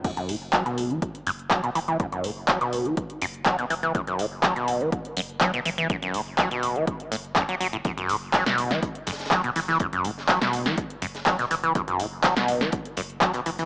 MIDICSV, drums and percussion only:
0, 0, Header, 1, 2, 480
1, 0, Start_track
1, 0, Key_signature, 3, "minor"
1, 0, Tempo, 487805
1, 44, Time_signature, 4, 2, 24, 8
1, 13434, End_track
2, 0, Start_track
2, 0, Title_t, "Drums"
2, 44, Note_on_c, 9, 36, 118
2, 44, Note_on_c, 9, 42, 79
2, 44, Note_on_c, 9, 49, 91
2, 142, Note_off_c, 9, 42, 0
2, 142, Note_off_c, 9, 49, 0
2, 143, Note_off_c, 9, 36, 0
2, 169, Note_on_c, 9, 42, 53
2, 268, Note_off_c, 9, 42, 0
2, 285, Note_on_c, 9, 46, 103
2, 383, Note_off_c, 9, 46, 0
2, 523, Note_on_c, 9, 39, 124
2, 524, Note_on_c, 9, 36, 118
2, 524, Note_on_c, 9, 42, 80
2, 621, Note_off_c, 9, 39, 0
2, 623, Note_off_c, 9, 36, 0
2, 623, Note_off_c, 9, 42, 0
2, 649, Note_on_c, 9, 42, 54
2, 748, Note_off_c, 9, 42, 0
2, 764, Note_on_c, 9, 46, 91
2, 863, Note_off_c, 9, 46, 0
2, 889, Note_on_c, 9, 42, 38
2, 988, Note_off_c, 9, 42, 0
2, 1004, Note_on_c, 9, 36, 118
2, 1005, Note_on_c, 9, 42, 81
2, 1103, Note_off_c, 9, 36, 0
2, 1103, Note_off_c, 9, 42, 0
2, 1129, Note_on_c, 9, 42, 52
2, 1228, Note_off_c, 9, 42, 0
2, 1245, Note_on_c, 9, 46, 106
2, 1343, Note_off_c, 9, 46, 0
2, 1369, Note_on_c, 9, 42, 37
2, 1467, Note_off_c, 9, 42, 0
2, 1482, Note_on_c, 9, 39, 119
2, 1484, Note_on_c, 9, 36, 119
2, 1484, Note_on_c, 9, 42, 81
2, 1581, Note_off_c, 9, 39, 0
2, 1583, Note_off_c, 9, 36, 0
2, 1583, Note_off_c, 9, 42, 0
2, 1609, Note_on_c, 9, 42, 55
2, 1708, Note_off_c, 9, 42, 0
2, 1724, Note_on_c, 9, 46, 94
2, 1822, Note_off_c, 9, 46, 0
2, 1849, Note_on_c, 9, 42, 39
2, 1947, Note_off_c, 9, 42, 0
2, 1964, Note_on_c, 9, 42, 79
2, 1965, Note_on_c, 9, 36, 124
2, 2062, Note_off_c, 9, 42, 0
2, 2063, Note_off_c, 9, 36, 0
2, 2089, Note_on_c, 9, 42, 52
2, 2187, Note_off_c, 9, 42, 0
2, 2204, Note_on_c, 9, 46, 108
2, 2302, Note_off_c, 9, 46, 0
2, 2443, Note_on_c, 9, 39, 122
2, 2444, Note_on_c, 9, 42, 82
2, 2445, Note_on_c, 9, 36, 126
2, 2541, Note_off_c, 9, 39, 0
2, 2543, Note_off_c, 9, 36, 0
2, 2543, Note_off_c, 9, 42, 0
2, 2569, Note_on_c, 9, 42, 52
2, 2667, Note_off_c, 9, 42, 0
2, 2684, Note_on_c, 9, 46, 94
2, 2782, Note_off_c, 9, 46, 0
2, 2809, Note_on_c, 9, 42, 36
2, 2907, Note_off_c, 9, 42, 0
2, 2924, Note_on_c, 9, 42, 80
2, 2925, Note_on_c, 9, 36, 124
2, 3022, Note_off_c, 9, 42, 0
2, 3023, Note_off_c, 9, 36, 0
2, 3048, Note_on_c, 9, 42, 53
2, 3147, Note_off_c, 9, 42, 0
2, 3164, Note_on_c, 9, 46, 112
2, 3262, Note_off_c, 9, 46, 0
2, 3288, Note_on_c, 9, 42, 36
2, 3387, Note_off_c, 9, 42, 0
2, 3402, Note_on_c, 9, 39, 122
2, 3404, Note_on_c, 9, 36, 122
2, 3404, Note_on_c, 9, 42, 79
2, 3500, Note_off_c, 9, 39, 0
2, 3502, Note_off_c, 9, 42, 0
2, 3503, Note_off_c, 9, 36, 0
2, 3528, Note_on_c, 9, 42, 52
2, 3627, Note_off_c, 9, 42, 0
2, 3644, Note_on_c, 9, 46, 95
2, 3742, Note_off_c, 9, 46, 0
2, 3768, Note_on_c, 9, 42, 37
2, 3867, Note_off_c, 9, 42, 0
2, 3884, Note_on_c, 9, 36, 127
2, 3884, Note_on_c, 9, 42, 76
2, 3983, Note_off_c, 9, 36, 0
2, 3983, Note_off_c, 9, 42, 0
2, 4008, Note_on_c, 9, 42, 49
2, 4106, Note_off_c, 9, 42, 0
2, 4124, Note_on_c, 9, 46, 110
2, 4222, Note_off_c, 9, 46, 0
2, 4362, Note_on_c, 9, 39, 123
2, 4364, Note_on_c, 9, 36, 126
2, 4364, Note_on_c, 9, 42, 79
2, 4461, Note_off_c, 9, 39, 0
2, 4463, Note_off_c, 9, 36, 0
2, 4463, Note_off_c, 9, 42, 0
2, 4489, Note_on_c, 9, 42, 49
2, 4587, Note_off_c, 9, 42, 0
2, 4604, Note_on_c, 9, 46, 99
2, 4702, Note_off_c, 9, 46, 0
2, 4729, Note_on_c, 9, 42, 34
2, 4827, Note_off_c, 9, 42, 0
2, 4844, Note_on_c, 9, 36, 124
2, 4844, Note_on_c, 9, 42, 75
2, 4943, Note_off_c, 9, 36, 0
2, 4943, Note_off_c, 9, 42, 0
2, 4969, Note_on_c, 9, 42, 50
2, 5068, Note_off_c, 9, 42, 0
2, 5084, Note_on_c, 9, 46, 115
2, 5182, Note_off_c, 9, 46, 0
2, 5208, Note_on_c, 9, 42, 35
2, 5307, Note_off_c, 9, 42, 0
2, 5321, Note_on_c, 9, 39, 121
2, 5323, Note_on_c, 9, 42, 75
2, 5324, Note_on_c, 9, 36, 125
2, 5420, Note_off_c, 9, 39, 0
2, 5422, Note_off_c, 9, 42, 0
2, 5423, Note_off_c, 9, 36, 0
2, 5448, Note_on_c, 9, 42, 51
2, 5547, Note_off_c, 9, 42, 0
2, 5564, Note_on_c, 9, 46, 101
2, 5662, Note_off_c, 9, 46, 0
2, 5689, Note_on_c, 9, 42, 36
2, 5787, Note_off_c, 9, 42, 0
2, 5803, Note_on_c, 9, 42, 75
2, 5804, Note_on_c, 9, 36, 123
2, 5902, Note_off_c, 9, 36, 0
2, 5902, Note_off_c, 9, 42, 0
2, 5928, Note_on_c, 9, 42, 50
2, 6027, Note_off_c, 9, 42, 0
2, 6044, Note_on_c, 9, 46, 105
2, 6142, Note_off_c, 9, 46, 0
2, 6282, Note_on_c, 9, 39, 115
2, 6284, Note_on_c, 9, 36, 126
2, 6284, Note_on_c, 9, 42, 74
2, 6380, Note_off_c, 9, 39, 0
2, 6382, Note_off_c, 9, 36, 0
2, 6382, Note_off_c, 9, 42, 0
2, 6408, Note_on_c, 9, 42, 47
2, 6507, Note_off_c, 9, 42, 0
2, 6524, Note_on_c, 9, 46, 95
2, 6623, Note_off_c, 9, 46, 0
2, 6649, Note_on_c, 9, 42, 35
2, 6747, Note_off_c, 9, 42, 0
2, 6764, Note_on_c, 9, 36, 123
2, 6764, Note_on_c, 9, 42, 76
2, 6862, Note_off_c, 9, 36, 0
2, 6863, Note_off_c, 9, 42, 0
2, 6889, Note_on_c, 9, 42, 51
2, 6987, Note_off_c, 9, 42, 0
2, 7004, Note_on_c, 9, 46, 109
2, 7102, Note_off_c, 9, 46, 0
2, 7129, Note_on_c, 9, 42, 34
2, 7227, Note_off_c, 9, 42, 0
2, 7242, Note_on_c, 9, 39, 113
2, 7244, Note_on_c, 9, 36, 123
2, 7244, Note_on_c, 9, 42, 77
2, 7340, Note_off_c, 9, 39, 0
2, 7342, Note_off_c, 9, 42, 0
2, 7343, Note_off_c, 9, 36, 0
2, 7368, Note_on_c, 9, 42, 52
2, 7467, Note_off_c, 9, 42, 0
2, 7484, Note_on_c, 9, 46, 96
2, 7583, Note_off_c, 9, 46, 0
2, 7721, Note_on_c, 9, 42, 90
2, 7724, Note_on_c, 9, 36, 120
2, 7725, Note_off_c, 9, 42, 0
2, 7725, Note_on_c, 9, 42, 74
2, 7823, Note_off_c, 9, 36, 0
2, 7823, Note_off_c, 9, 42, 0
2, 7849, Note_on_c, 9, 42, 51
2, 7947, Note_off_c, 9, 42, 0
2, 7964, Note_on_c, 9, 46, 105
2, 7966, Note_on_c, 9, 42, 70
2, 8063, Note_off_c, 9, 46, 0
2, 8065, Note_off_c, 9, 42, 0
2, 8203, Note_on_c, 9, 38, 108
2, 8203, Note_on_c, 9, 39, 113
2, 8204, Note_on_c, 9, 36, 117
2, 8205, Note_on_c, 9, 42, 77
2, 8209, Note_off_c, 9, 42, 0
2, 8209, Note_on_c, 9, 42, 80
2, 8301, Note_off_c, 9, 39, 0
2, 8302, Note_off_c, 9, 38, 0
2, 8303, Note_off_c, 9, 36, 0
2, 8308, Note_off_c, 9, 42, 0
2, 8329, Note_on_c, 9, 38, 85
2, 8329, Note_on_c, 9, 42, 51
2, 8428, Note_off_c, 9, 38, 0
2, 8428, Note_off_c, 9, 42, 0
2, 8444, Note_on_c, 9, 46, 91
2, 8448, Note_on_c, 9, 42, 63
2, 8543, Note_off_c, 9, 46, 0
2, 8547, Note_off_c, 9, 42, 0
2, 8569, Note_on_c, 9, 38, 62
2, 8667, Note_off_c, 9, 38, 0
2, 8684, Note_on_c, 9, 36, 123
2, 8684, Note_on_c, 9, 42, 74
2, 8689, Note_off_c, 9, 42, 0
2, 8689, Note_on_c, 9, 42, 90
2, 8783, Note_off_c, 9, 36, 0
2, 8788, Note_off_c, 9, 42, 0
2, 8809, Note_on_c, 9, 42, 50
2, 8907, Note_off_c, 9, 42, 0
2, 8921, Note_on_c, 9, 42, 62
2, 8923, Note_on_c, 9, 38, 92
2, 8924, Note_on_c, 9, 46, 107
2, 8981, Note_off_c, 9, 38, 0
2, 8981, Note_on_c, 9, 38, 93
2, 8984, Note_off_c, 9, 42, 0
2, 8984, Note_on_c, 9, 42, 67
2, 9023, Note_off_c, 9, 46, 0
2, 9043, Note_off_c, 9, 42, 0
2, 9043, Note_on_c, 9, 42, 65
2, 9049, Note_off_c, 9, 42, 0
2, 9049, Note_on_c, 9, 42, 33
2, 9050, Note_off_c, 9, 38, 0
2, 9050, Note_on_c, 9, 38, 85
2, 9106, Note_off_c, 9, 42, 0
2, 9106, Note_on_c, 9, 42, 65
2, 9110, Note_off_c, 9, 38, 0
2, 9110, Note_on_c, 9, 38, 88
2, 9162, Note_on_c, 9, 39, 112
2, 9164, Note_off_c, 9, 42, 0
2, 9164, Note_on_c, 9, 42, 74
2, 9165, Note_off_c, 9, 38, 0
2, 9165, Note_on_c, 9, 36, 120
2, 9165, Note_on_c, 9, 38, 107
2, 9261, Note_off_c, 9, 39, 0
2, 9263, Note_off_c, 9, 36, 0
2, 9263, Note_off_c, 9, 38, 0
2, 9263, Note_off_c, 9, 42, 0
2, 9289, Note_on_c, 9, 42, 52
2, 9387, Note_off_c, 9, 42, 0
2, 9404, Note_on_c, 9, 46, 94
2, 9409, Note_on_c, 9, 42, 66
2, 9415, Note_on_c, 9, 38, 52
2, 9503, Note_off_c, 9, 46, 0
2, 9507, Note_off_c, 9, 42, 0
2, 9513, Note_off_c, 9, 38, 0
2, 9529, Note_on_c, 9, 42, 36
2, 9533, Note_on_c, 9, 38, 44
2, 9628, Note_off_c, 9, 42, 0
2, 9632, Note_off_c, 9, 38, 0
2, 9639, Note_on_c, 9, 42, 77
2, 9644, Note_off_c, 9, 42, 0
2, 9644, Note_on_c, 9, 36, 116
2, 9644, Note_on_c, 9, 42, 76
2, 9743, Note_off_c, 9, 36, 0
2, 9743, Note_off_c, 9, 42, 0
2, 9769, Note_on_c, 9, 42, 52
2, 9868, Note_off_c, 9, 42, 0
2, 9883, Note_on_c, 9, 42, 64
2, 9884, Note_on_c, 9, 46, 98
2, 9982, Note_off_c, 9, 42, 0
2, 9983, Note_off_c, 9, 46, 0
2, 10015, Note_on_c, 9, 38, 47
2, 10113, Note_off_c, 9, 38, 0
2, 10122, Note_on_c, 9, 39, 114
2, 10124, Note_on_c, 9, 36, 115
2, 10124, Note_on_c, 9, 38, 103
2, 10124, Note_on_c, 9, 42, 77
2, 10128, Note_off_c, 9, 42, 0
2, 10128, Note_on_c, 9, 42, 85
2, 10221, Note_off_c, 9, 39, 0
2, 10222, Note_off_c, 9, 38, 0
2, 10223, Note_off_c, 9, 36, 0
2, 10226, Note_off_c, 9, 42, 0
2, 10249, Note_on_c, 9, 38, 83
2, 10249, Note_on_c, 9, 42, 52
2, 10347, Note_off_c, 9, 38, 0
2, 10347, Note_off_c, 9, 42, 0
2, 10364, Note_on_c, 9, 46, 89
2, 10371, Note_on_c, 9, 42, 65
2, 10462, Note_off_c, 9, 46, 0
2, 10469, Note_off_c, 9, 42, 0
2, 10488, Note_on_c, 9, 38, 61
2, 10587, Note_off_c, 9, 38, 0
2, 10604, Note_on_c, 9, 36, 115
2, 10604, Note_on_c, 9, 42, 89
2, 10702, Note_off_c, 9, 42, 0
2, 10703, Note_off_c, 9, 36, 0
2, 10729, Note_on_c, 9, 42, 53
2, 10827, Note_off_c, 9, 42, 0
2, 10844, Note_on_c, 9, 46, 104
2, 10845, Note_on_c, 9, 42, 61
2, 10942, Note_off_c, 9, 46, 0
2, 10944, Note_off_c, 9, 42, 0
2, 10969, Note_on_c, 9, 38, 57
2, 10969, Note_on_c, 9, 42, 35
2, 11067, Note_off_c, 9, 42, 0
2, 11068, Note_off_c, 9, 38, 0
2, 11082, Note_on_c, 9, 39, 112
2, 11084, Note_on_c, 9, 36, 114
2, 11084, Note_on_c, 9, 42, 77
2, 11089, Note_on_c, 9, 38, 118
2, 11180, Note_off_c, 9, 39, 0
2, 11182, Note_off_c, 9, 42, 0
2, 11183, Note_off_c, 9, 36, 0
2, 11188, Note_off_c, 9, 38, 0
2, 11208, Note_on_c, 9, 42, 52
2, 11211, Note_on_c, 9, 38, 42
2, 11307, Note_off_c, 9, 42, 0
2, 11309, Note_off_c, 9, 38, 0
2, 11321, Note_on_c, 9, 38, 45
2, 11324, Note_on_c, 9, 42, 68
2, 11324, Note_on_c, 9, 46, 92
2, 11419, Note_off_c, 9, 38, 0
2, 11422, Note_off_c, 9, 46, 0
2, 11423, Note_off_c, 9, 42, 0
2, 11449, Note_on_c, 9, 42, 37
2, 11547, Note_off_c, 9, 42, 0
2, 11564, Note_on_c, 9, 42, 87
2, 11565, Note_on_c, 9, 36, 116
2, 11662, Note_off_c, 9, 42, 0
2, 11663, Note_off_c, 9, 36, 0
2, 11689, Note_on_c, 9, 42, 55
2, 11787, Note_off_c, 9, 42, 0
2, 11804, Note_on_c, 9, 42, 62
2, 11804, Note_on_c, 9, 46, 100
2, 11902, Note_off_c, 9, 42, 0
2, 11903, Note_off_c, 9, 46, 0
2, 12040, Note_on_c, 9, 38, 126
2, 12042, Note_on_c, 9, 39, 119
2, 12044, Note_on_c, 9, 42, 82
2, 12045, Note_on_c, 9, 36, 114
2, 12047, Note_off_c, 9, 42, 0
2, 12047, Note_on_c, 9, 42, 97
2, 12138, Note_off_c, 9, 38, 0
2, 12140, Note_off_c, 9, 39, 0
2, 12143, Note_off_c, 9, 36, 0
2, 12145, Note_off_c, 9, 42, 0
2, 12168, Note_on_c, 9, 38, 81
2, 12168, Note_on_c, 9, 42, 52
2, 12267, Note_off_c, 9, 38, 0
2, 12267, Note_off_c, 9, 42, 0
2, 12282, Note_on_c, 9, 42, 63
2, 12284, Note_on_c, 9, 46, 87
2, 12381, Note_off_c, 9, 42, 0
2, 12382, Note_off_c, 9, 46, 0
2, 12409, Note_on_c, 9, 38, 59
2, 12409, Note_on_c, 9, 42, 36
2, 12507, Note_off_c, 9, 38, 0
2, 12507, Note_off_c, 9, 42, 0
2, 12519, Note_on_c, 9, 42, 79
2, 12524, Note_off_c, 9, 42, 0
2, 12524, Note_on_c, 9, 42, 81
2, 12525, Note_on_c, 9, 36, 118
2, 12623, Note_off_c, 9, 36, 0
2, 12623, Note_off_c, 9, 42, 0
2, 12649, Note_on_c, 9, 42, 55
2, 12747, Note_off_c, 9, 42, 0
2, 12760, Note_on_c, 9, 42, 73
2, 12764, Note_on_c, 9, 46, 104
2, 12859, Note_off_c, 9, 42, 0
2, 12863, Note_off_c, 9, 46, 0
2, 12889, Note_on_c, 9, 42, 36
2, 12987, Note_off_c, 9, 42, 0
2, 13002, Note_on_c, 9, 39, 115
2, 13002, Note_on_c, 9, 42, 58
2, 13004, Note_off_c, 9, 42, 0
2, 13004, Note_on_c, 9, 36, 115
2, 13004, Note_on_c, 9, 42, 82
2, 13101, Note_off_c, 9, 39, 0
2, 13102, Note_off_c, 9, 42, 0
2, 13103, Note_off_c, 9, 36, 0
2, 13121, Note_on_c, 9, 42, 82
2, 13129, Note_off_c, 9, 42, 0
2, 13129, Note_on_c, 9, 42, 56
2, 13228, Note_off_c, 9, 42, 0
2, 13245, Note_on_c, 9, 46, 90
2, 13343, Note_off_c, 9, 46, 0
2, 13369, Note_on_c, 9, 42, 39
2, 13375, Note_off_c, 9, 42, 0
2, 13375, Note_on_c, 9, 42, 60
2, 13434, Note_off_c, 9, 42, 0
2, 13434, End_track
0, 0, End_of_file